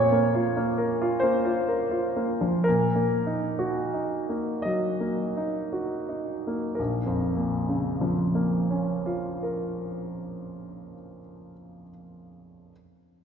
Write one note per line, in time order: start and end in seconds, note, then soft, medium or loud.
0.00 2.63 A#2 medium
0.00 1.20 C#5 medium
0.12 0.46 A#3 soft
0.35 0.68 F4 soft
0.57 0.91 A#3 soft
0.78 1.13 A#4 soft
1.02 1.36 F4 soft
1.20 1.58 A#3 soft
1.20 2.65 C5 medium
1.45 1.81 F4 soft
1.68 2.06 A#4 soft
1.91 2.30 F4 soft
2.16 2.56 A#3 soft
2.41 2.66 F3 soft
2.64 4.63 A#4 medium
2.68 6.75 A#2 soft
2.96 3.45 A#3 soft
3.26 3.79 D#4 soft
3.59 4.15 F#4 soft
3.94 4.51 D#4 soft
4.29 4.85 A#3 soft
4.62 5.21 F#3 soft
4.62 6.77 D#5 medium
5.00 5.56 A#3 soft
5.37 5.94 D#4 soft
5.73 6.32 F#4 soft
6.09 6.65 D#4 soft
6.47 6.79 A#3 soft
6.75 9.41 A#4 soft
6.79 10.93 A#1 soft
7.06 11.20 F2 soft
7.37 11.50 A#2 soft
7.69 11.82 C#3 soft
8.01 11.90 F3 soft
8.35 11.90 A#3 soft
8.71 11.90 C#4 soft
9.06 11.90 F4 soft
9.43 11.90 A#4 soft